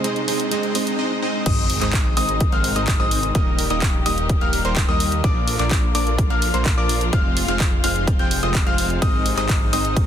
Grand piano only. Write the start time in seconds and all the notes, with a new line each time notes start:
1.46 D#6
1.82 D#6
2.17 D#6
2.52 F6
2.76 D#6
3.00 D#6
3.35 D#6
3.71 D#6
4.06 D#6
4.41 F6
4.65 C6
4.89 D#6
5.24 D6
5.59 D6
5.95 D6
6.30 F6
6.54 C6
6.78 D6
7.13 F6
7.48 F6
7.84 F6
8.19 G6
8.43 D#6
8.66 F6
9.02 D#6
9.37 D#6
9.73 D#6